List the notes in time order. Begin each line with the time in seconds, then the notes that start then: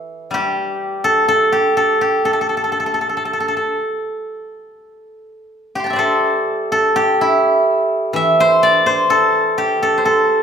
Already playing: E3 E4
0.31 G3 G4
1.04 A4
1.28 A4
1.52 G4
1.77 A4
2.01 G4
2.25 A4
2.33 A4
2.41 A4
2.49 A4
2.57 A4
2.64 A4
2.72 A4
2.80 A4
2.86 A4
2.94 A4
3.01 A4
3.09 A4
3.17 A4
3.25 A4
3.33 A4
3.40 A4
3.48 A4
3.57 A4
5.75 G4 D6
5.79 C6
5.84 G5 A5
5.90 D5 E5
5.96 A4 C5
6.72 A4
6.96 G4
7.21 E4
8.13 E3 E5
8.40 C5
8.63 D5
8.86 C5
9.10 A4
9.58 G4
9.83 A4
9.98 C5
10.05 A4